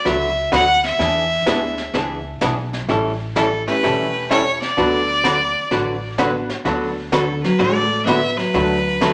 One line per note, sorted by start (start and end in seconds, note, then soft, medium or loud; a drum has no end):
0.05 0.45 C#2 medium
0.05 0.28 D3 medium
0.05 0.28 F#3 medium
0.05 0.28 B3 medium
0.05 0.28 F#4 medium
0.05 0.28 B4 medium
0.05 0.53 E5 loud
0.05 brush sweep soft
0.05 snare soft
0.52 0.92 D2 medium
0.52 0.64 D3 medium
0.52 0.64 F#3 medium
0.52 0.64 B3 medium
0.52 0.64 F#4 medium
0.52 0.65 B4 medium
0.52 0.82 F#5 loud
0.52 snare medium
0.52 hi-hat pedal medium
0.84 2.22 E5 loud
0.84 snare soft
0.99 1.37 E2 medium
0.99 1.22 E3 medium
0.99 1.22 B3 medium
0.99 1.22 D4 medium
0.99 1.23 G#4 medium
0.99 brush sweep soft
0.99 snare soft
1.46 1.87 D2 medium
1.46 1.59 E3 medium
1.46 1.75 G#3 medium
1.46 1.59 B3 medium
1.46 1.75 B3 medium
1.46 1.59 D4 medium
1.46 1.75 D4 medium
1.46 1.76 E4 medium
1.46 1.59 G#4 medium
1.46 snare medium
1.46 hi-hat pedal medium
1.78 snare soft
1.94 2.35 C#2 medium
1.94 2.17 E3 medium
1.94 2.17 B3 medium
1.94 2.17 D4 medium
1.94 2.17 G#4 medium
1.94 brush sweep soft
1.94 snare soft
2.41 2.82 B1 medium
2.41 2.53 E3 medium
2.41 2.54 B3 medium
2.41 2.54 D4 medium
2.41 2.54 G#4 medium
2.41 snare medium
2.41 hi-hat pedal medium
2.73 snare soft
2.88 3.64 A1 medium
2.88 3.11 E3 medium
2.88 3.11 G3 medium
2.88 3.12 C#4 medium
2.88 3.12 E4 medium
2.88 3.12 A4 medium
2.88 brush sweep soft
2.88 snare soft
3.36 3.48 E3 medium
3.36 3.48 G3 medium
3.36 3.48 C#4 medium
3.36 3.48 E4 medium
3.36 3.65 A4 medium
3.36 3.48 A4 medium
3.36 snare medium
3.36 hi-hat pedal medium
3.67 4.27 A3 medium
3.67 4.27 C#4 medium
3.67 4.27 E4 medium
3.67 4.27 G4 medium
3.67 4.26 B4 loud
3.67 snare soft
3.83 4.59 E1 medium
3.83 4.06 E3 medium
3.83 4.06 G3 soft
3.83 4.06 C#4 medium
3.83 4.06 E4 medium
3.83 4.06 A4 medium
3.83 brush sweep soft
3.83 snare soft
4.31 4.42 E3 medium
4.31 4.43 G3 medium
4.31 4.42 C#4 medium
4.31 4.43 E4 medium
4.31 4.43 A4 medium
4.31 4.60 C#5 medium
4.31 snare medium
4.31 hi-hat pedal medium
4.62 6.15 D5 loud
4.62 snare soft
4.77 5.53 D2 medium
4.77 5.00 D3 medium
4.77 5.00 F#3 medium
4.77 5.05 B3 medium
4.77 5.00 B3 medium
4.77 5.05 D4 medium
4.77 5.06 F#4 medium
4.77 5.00 F#4 medium
4.77 5.06 A4 medium
4.77 5.01 B4 medium
4.77 brush sweep soft
4.77 snare soft
5.24 5.36 D3 medium
5.24 5.36 F#3 medium
5.24 5.36 B3 medium
5.24 5.36 F#4 medium
5.24 5.37 B4 medium
5.24 snare medium
5.24 hi-hat pedal medium
5.71 6.47 A1 medium
5.71 5.94 D3 medium
5.71 5.94 F#3 soft
5.71 5.94 B3 soft
5.71 5.94 F#4 medium
5.71 5.95 B4 medium
5.71 brush sweep soft
5.71 snare soft
6.18 6.31 D3 medium
6.18 6.31 F#3 medium
6.18 6.47 B3 medium
6.18 6.31 B3 medium
6.18 6.47 D4 medium
6.18 6.47 F#4 medium
6.18 6.31 F#4 medium
6.18 6.31 B4 medium
6.18 6.47 B4 medium
6.18 snare medium
6.18 hi-hat pedal soft
6.49 snare soft
6.65 7.41 D2 medium
6.65 6.88 D3 soft
6.65 6.88 F#3 medium
6.65 6.88 B3 medium
6.65 6.94 B3 medium
6.65 6.94 D4 soft
6.65 6.88 F#4 medium
6.65 6.95 F#4 soft
6.65 6.95 A4 medium
6.65 6.88 B4 medium
6.65 brush sweep soft
6.65 snare soft
7.12 7.25 D3 medium
7.12 7.43 D3 medium
7.12 7.25 F#3 medium
7.12 7.25 B3 medium
7.12 7.25 F#4 medium
7.12 7.42 A4 medium
7.12 7.25 B4 medium
7.12 snare medium
7.12 hi-hat pedal medium
7.43 7.59 F#3 medium
7.43 7.60 B4 medium
7.43 snare soft
7.59 8.35 A1 medium
7.59 7.83 D3 medium
7.59 7.83 F#3 soft
7.59 8.05 A3 medium
7.59 7.83 B3 soft
7.59 7.83 F#4 medium
7.59 7.83 B4 medium
7.59 8.05 D5 medium
7.59 brush sweep soft
7.59 snare soft
8.05 8.19 D3 medium
8.05 8.19 F#3 medium
8.05 8.37 B3 medium
8.05 8.20 B3 medium
8.05 8.20 F#4 medium
8.05 8.20 B4 medium
8.05 8.39 E5 loud
8.05 snare medium
8.05 hi-hat pedal medium
8.37 9.13 F#3 medium
8.37 9.13 B4 loud
8.37 snare soft
8.54 9.13 D2 medium
8.54 8.77 D3 medium
8.54 8.77 F#3 medium
8.54 8.77 A3 medium
8.54 8.77 D4 medium
8.54 8.77 F#4 medium
8.54 8.77 B4 medium
8.54 brush sweep soft
8.54 snare soft
9.01 9.13 D3 medium
9.01 9.13 F#3 medium
9.01 9.13 A3 medium
9.01 9.13 D4 medium
9.01 9.13 F#4 medium
9.01 9.13 B4 medium
9.01 snare medium
9.01 hi-hat pedal medium